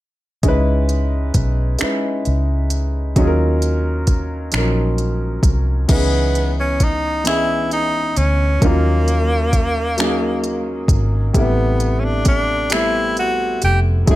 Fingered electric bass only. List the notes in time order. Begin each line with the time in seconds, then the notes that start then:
0.44 C#2
1.35 B1
1.82 muted fingered electric bass stroke
2.27 C#2
3.17 D#2
4.54 A#1
5.43 C2
5.90 C#2
8.17 D2
8.63 D#2
10.89 G#1
11.35 A1
13.64 F1
14.08 F#1